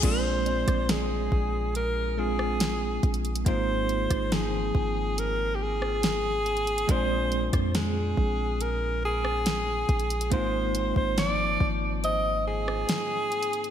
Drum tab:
CC |x-------------------------------|--------------------------------|--------------------------------|--------------------------------|
HH |x---x-x-x-------x-------x---xxxx|x---x-x-x-------x-------x---xxxx|x---x-x-x-------x-------x---xxxx|x---x---x-------x-------x---xxxx|
SD |------r-o-------------r-o-------|------r-o-------------r-o-------|------r-o-------------r-o-------|--------o-------------r-o-------|
BD |o-----o-----o---------------o---|o-----o-----o-------------------|o-----o-----o---------------o---|o-----o-----o-------------------|